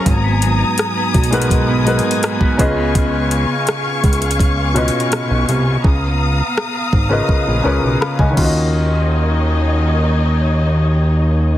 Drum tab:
CC |------------------------------------------------------------------------------------------------|------------------------------------------------------------------------------------------------|------------------------------------------------------------------------------------x-----------|------------------------------------------------------------------------------------------------|
HH |x-----------x-----------x-----------x--x--x--x--x-----------x---x---x---x-----------x-----------|x-----------x-----------x-----------x--x--x--x--x-----------x---x---x---x-----------x-----------|------------------------------------------------------------------------------------------------|------------------------------------------------------------------------------------------------|
SD |------------------------r-----------------------------------------------r-----------------------|------------------------r-----------------------------------------------r-----------------------|------------------------r-----------------------------------------------r-----------------------|------------------------------------------------------------------------------------------------|
BD |o-----------------------------------o-----------o-----------------------------o-----o-----------|o-----------------------------------o-----------o-----------------------------------------------|o-----------------------------------o-----------o-----------------------------o-----o-----------|------------------------------------------------------------------------------------------------|